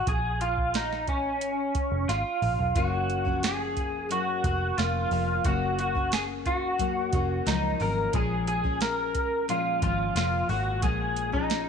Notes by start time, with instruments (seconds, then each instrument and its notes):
0.07 picked electric bass A#1, clean electric guitar G#4, kick, closed hi-hat
0.41 clean electric guitar F4, closed hi-hat
0.58 kick
0.74 clean electric guitar D#4, snare, closed hi-hat
0.93 snare
1.08 clean electric guitar C#4, kick, closed hi-hat
1.41 picked electric bass G#1, closed hi-hat
1.75 muted picked electric bass stroke, kick, closed hi-hat
1.92 picked electric bass F1
2.09 picked electric bass G#1, clean electric guitar F4, snare, closed hi-hat
2.42 picked electric bass A#1, mid tom, open hi-hat
2.59 picked electric bass B1, floor tom
2.75 picked electric bass F#1, steel-string acoustic guitar F#2 A#3 C#4, clean electric guitar F#4, kick, closed hi-hat
3.10 closed hi-hat
3.25 steel-string acoustic guitar F3 A#3 C#4, kick
3.43 clean electric guitar G#4, snare, closed hi-hat
3.77 kick, closed hi-hat
4.09 steel-string acoustic guitar F#2 A#3 C#4, clean electric guitar F#4, closed hi-hat
4.44 picked electric bass F1, steel-string acoustic guitar A#3 C#4, kick, closed hi-hat
4.78 picked electric bass F1, steel-string acoustic guitar F3 A#3 C#4, clean electric guitar F4, snare, closed hi-hat
5.11 picked electric bass F1, steel-string acoustic guitar F3 A#3 C#4, open hi-hat
5.44 picked electric bass F#1, steel-string acoustic guitar F#2 A#3 C#4, clean electric guitar F#4, kick, closed hi-hat
5.79 clean electric guitar F#4, closed hi-hat
5.95 steel-string acoustic guitar A#3 C#4, kick
6.12 clean electric guitar G#4, snare, closed hi-hat
6.46 clean electric guitar F#4, kick, closed hi-hat
6.78 steel-string acoustic guitar F#2 A#3 C#4, kick, closed hi-hat
7.13 picked electric bass F1, steel-string acoustic guitar A#3 C#4, kick, closed hi-hat
7.46 picked electric bass C#2, steel-string acoustic guitar F#2 F3 A#3 C#4, clean electric guitar D#4, snare, closed hi-hat
7.79 picked electric bass G#1, steel-string acoustic guitar F#2 F3 A#3 C#4, clean electric guitar A#4, open hi-hat
8.13 picked electric bass A#1, steel-string acoustic guitar A#2 F3 G#3 C#4, clean electric guitar G#4, kick, closed hi-hat
8.47 clean electric guitar G#4, closed hi-hat
8.64 steel-string acoustic guitar F3 G#3 C#4, kick
8.81 clean electric guitar A#4, snare, closed hi-hat
9.15 kick, closed hi-hat
9.48 steel-string acoustic guitar A#2 F3 G#3 C#4, clean electric guitar F4, closed hi-hat
9.82 picked electric bass G#1, steel-string acoustic guitar A#2 F3 G#3 C#4, clean electric guitar F4, kick, closed hi-hat
10.15 picked electric bass F1, steel-string acoustic guitar A#2 F3 G#3 C#4, clean electric guitar F4, snare, closed hi-hat
10.49 picked electric bass G#1, steel-string acoustic guitar A#2 G#3 C#4, clean electric guitar F#4, open hi-hat
10.82 picked electric bass A#1, steel-string acoustic guitar A#2 F3 G#3 C#4, clean electric guitar G#4, kick, closed hi-hat
11.16 closed hi-hat
11.32 steel-string acoustic guitar F3 G#3 C#4, clean electric guitar D#4, kick
11.50 snare, closed hi-hat